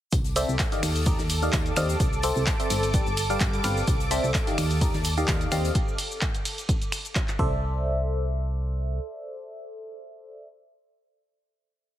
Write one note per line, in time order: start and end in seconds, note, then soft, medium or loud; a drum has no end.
0.12 0.44 C2 medium
0.12 7.39 A4 medium
0.12 7.39 D6 medium
0.12 kick loud
0.12 closed hi-hat medium
0.12 tambourine medium
0.12 cabasa soft
0.12 shaker medium
0.24 closed hi-hat soft
0.24 tambourine soft
0.24 cabasa soft
0.36 0.56 C4 loud
0.36 0.56 A4 medium
0.36 0.56 C5 medium
0.36 0.56 D5 medium
0.36 0.56 E5 loud
0.36 snare soft
0.36 open hi-hat loud
0.36 ride medium
0.36 tambourine medium
0.36 cabasa medium
0.36 shaker medium
0.49 0.57 C2 medium
0.49 tambourine soft
0.49 cabasa soft
0.59 kick loud
0.59 snare loud
0.59 clap loud
0.59 closed hi-hat medium
0.59 tambourine medium
0.59 cabasa soft
0.59 shaker medium
0.72 1.04 D#3 medium
0.72 1.04 G4 medium
0.72 1.04 D5 medium
0.72 1.04 D#5 medium
0.72 1.04 F5 medium
0.72 snare medium
0.72 closed hi-hat medium
0.72 tambourine soft
0.72 cabasa soft
0.83 1.14 D#2 loud
0.83 finger snap medium
0.83 open hi-hat loud
0.83 open hi-hat medium
0.83 ride medium
0.83 tambourine medium
0.83 cabasa medium
0.96 closed hi-hat medium
0.96 tambourine soft
0.96 cabasa soft
1.06 1.19 D#3 medium
1.06 1.19 G4 medium
1.06 1.19 D5 medium
1.06 1.19 D#5 medium
1.06 1.19 A#5 medium
1.06 kick loud
1.06 closed hi-hat medium
1.06 tambourine medium
1.06 cabasa soft
1.06 shaker loud
1.18 1.49 D#2 medium
1.18 snare medium
1.18 tambourine soft
1.18 cabasa soft
1.29 open hi-hat loud
1.29 ride medium
1.29 tambourine medium
1.29 cabasa medium
1.29 shaker medium
1.42 1.74 D#3 medium
1.42 1.74 G4 medium
1.42 1.74 D5 medium
1.42 1.74 D#5 medium
1.42 1.74 F5 medium
1.42 closed hi-hat soft
1.42 tambourine soft
1.42 cabasa soft
1.53 1.72 D#2 loud
1.53 kick loud
1.53 snare loud
1.53 clap loud
1.53 closed hi-hat medium
1.53 tambourine soft
1.53 cabasa soft
1.53 shaker medium
1.66 closed hi-hat soft
1.66 tambourine soft
1.66 cabasa soft
1.76 1.95 D#2 loud
1.76 1.96 C4 loud
1.76 1.96 G4 medium
1.76 1.96 D5 medium
1.76 1.96 D#5 medium
1.76 1.96 F5 loud
1.76 finger snap medium
1.76 open hi-hat loud
1.76 ride medium
1.76 tambourine medium
1.76 cabasa medium
1.76 shaker medium
1.89 closed hi-hat soft
1.89 tambourine soft
1.89 cabasa soft
2.00 2.31 C2 medium
2.00 kick loud
2.00 closed hi-hat medium
2.00 tambourine medium
2.00 cabasa soft
2.00 shaker medium
2.13 tambourine soft
2.13 cabasa soft
2.23 2.43 C4 medium
2.23 2.43 A4 medium
2.23 2.43 C5 medium
2.23 2.43 D5 medium
2.23 2.43 E5 loud
2.23 open hi-hat loud
2.23 ride medium
2.23 tambourine loud
2.23 cabasa medium
2.23 shaker medium
2.35 2.44 C2 loud
2.35 tambourine soft
2.35 cabasa soft
2.47 kick loud
2.47 snare loud
2.47 clap loud
2.47 closed hi-hat medium
2.47 tambourine soft
2.47 cabasa soft
2.47 shaker medium
2.59 2.91 C4 medium
2.59 2.91 A4 medium
2.59 2.91 C5 medium
2.59 2.91 D5 medium
2.59 2.91 E5 medium
2.59 closed hi-hat medium
2.59 closed hi-hat soft
2.59 tambourine soft
2.59 cabasa soft
2.70 3.02 G1 loud
2.70 open hi-hat loud
2.70 ride medium
2.70 tambourine medium
2.70 cabasa medium
2.70 shaker medium
2.83 closed hi-hat medium
2.83 tambourine soft
2.83 cabasa soft
2.93 3.07 G3 medium
2.93 3.07 G4 medium
2.93 3.07 B4 medium
2.93 3.07 D5 medium
2.93 3.07 A5 medium
2.93 kick loud
2.93 closed hi-hat medium
2.93 tambourine medium
2.93 cabasa soft
2.93 shaker medium
3.06 3.37 G1 medium
3.06 tambourine soft
3.06 cabasa soft
3.17 open hi-hat loud
3.17 ride medium
3.17 tambourine medium
3.17 cabasa medium
3.17 shaker medium
3.30 3.62 G3 medium
3.30 3.62 G4 medium
3.30 3.62 B4 medium
3.30 3.62 D5 medium
3.30 3.62 F5 loud
3.30 closed hi-hat soft
3.30 tambourine soft
3.30 cabasa soft
3.40 3.59 G1 loud
3.40 kick loud
3.40 snare loud
3.40 clap loud
3.40 closed hi-hat medium
3.40 tambourine medium
3.40 cabasa soft
3.40 shaker medium
3.53 closed hi-hat soft
3.53 tambourine soft
3.53 cabasa soft
3.64 3.82 G1 loud
3.64 3.84 C4 loud
3.64 3.84 G4 medium
3.64 3.84 B4 medium
3.64 3.84 D5 medium
3.64 3.84 F5 loud
3.64 finger snap medium
3.64 open hi-hat loud
3.64 ride medium
3.64 tambourine loud
3.64 cabasa medium
3.64 shaker medium
3.77 tambourine soft
3.77 cabasa soft
3.87 4.19 C2 loud
3.87 kick loud
3.87 closed hi-hat medium
3.87 tambourine medium
3.87 cabasa soft
3.87 shaker medium
4.00 closed hi-hat soft
4.00 tambourine soft
4.00 cabasa soft
4.11 4.31 C4 medium
4.11 4.31 A4 medium
4.11 4.31 C5 medium
4.11 4.31 D5 medium
4.11 4.31 E5 loud
4.11 snare medium
4.11 open hi-hat loud
4.11 ride medium
4.11 tambourine medium
4.11 cabasa medium
4.11 shaker medium
4.24 4.32 C2 medium
4.24 tambourine soft
4.24 cabasa soft
4.34 kick loud
4.34 snare loud
4.34 clap loud
4.34 closed hi-hat medium
4.34 tambourine medium
4.34 cabasa soft
4.34 shaker medium
4.46 4.79 D#3 medium
4.46 4.79 G4 medium
4.46 4.79 D5 medium
4.46 4.79 D#5 medium
4.46 4.79 F5 medium
4.46 snare medium
4.46 closed hi-hat soft
4.46 tambourine soft
4.46 cabasa soft
4.58 4.89 D#2 loud
4.58 finger snap medium
4.58 open hi-hat loud
4.58 open hi-hat medium
4.58 ride medium
4.58 tambourine medium
4.58 cabasa medium
4.70 closed hi-hat medium
4.70 tambourine soft
4.70 cabasa soft
4.81 4.94 D#3 medium
4.81 4.94 G4 medium
4.81 4.94 D5 medium
4.81 4.94 D#5 medium
4.81 4.94 A#5 medium
4.81 kick loud
4.81 closed hi-hat medium
4.81 tambourine medium
4.81 cabasa soft
4.81 shaker medium
4.93 5.24 D#2 medium
4.93 snare medium
4.93 tambourine soft
4.93 cabasa soft
5.04 open hi-hat loud
5.04 ride medium
5.04 tambourine loud
5.04 cabasa medium
5.04 shaker medium
5.17 5.49 D#3 medium
5.17 5.49 G4 medium
5.17 5.49 D5 medium
5.17 5.49 D#5 medium
5.17 5.49 F5 loud
5.17 closed hi-hat soft
5.17 tambourine soft
5.17 cabasa soft
5.28 5.47 D#2 medium
5.28 kick loud
5.28 snare loud
5.28 clap loud
5.28 closed hi-hat medium
5.28 tambourine medium
5.28 cabasa soft
5.28 shaker medium
5.41 closed hi-hat soft
5.41 tambourine soft
5.41 cabasa soft
5.51 5.70 D#2 loud
5.51 5.71 C4 loud
5.51 5.71 G4 medium
5.51 5.71 D5 medium
5.51 5.71 D#5 medium
5.51 5.71 F5 loud
5.51 finger snap medium
5.51 open hi-hat loud
5.51 ride medium
5.51 tambourine medium
5.51 cabasa medium
5.51 shaker medium
5.65 closed hi-hat soft
5.65 tambourine soft
5.65 cabasa soft
5.75 kick loud
5.75 closed hi-hat medium
5.75 cabasa soft
5.88 cabasa soft
5.98 open hi-hat loud
5.98 ride medium
5.98 cabasa medium
6.12 cabasa soft
6.21 kick loud
6.21 clap loud
6.21 closed hi-hat medium
6.21 cabasa soft
6.34 closed hi-hat soft
6.34 cabasa soft
6.45 open hi-hat loud
6.45 ride medium
6.45 cabasa medium
6.58 closed hi-hat soft
6.58 cabasa soft
6.69 kick loud
6.69 closed hi-hat medium
6.69 cabasa soft
6.82 closed hi-hat soft
6.82 cabasa soft
6.92 finger snap medium
6.92 open hi-hat loud
6.92 ride medium
6.92 cabasa medium
7.05 closed hi-hat soft
7.05 cabasa soft
7.15 kick loud
7.15 clap loud
7.15 closed hi-hat medium
7.15 cabasa soft
7.28 clap soft
7.28 closed hi-hat soft
7.28 cabasa soft
7.39 8.99 C2 loud
7.39 10.48 A4 medium
7.39 10.48 C5 medium
7.39 10.48 D5 medium
7.39 10.48 E5 loud
7.39 kick loud